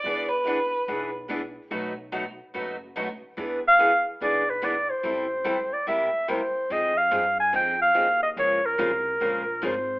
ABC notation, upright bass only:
X:1
M:4/4
L:1/8
Q:"Swing" 1/4=144
K:Ephr
V:1 name="Upright bass" clef=bass
E,,4 B,,,4 | B,,,4 ^F,,,4 | E,,4 B,,,4 | A,,,4 z4 |
[K:Fm] F,,2 G,,2 F,,2 E,,2 | D,,2 C,,2 B,,,2 A,,,2 |]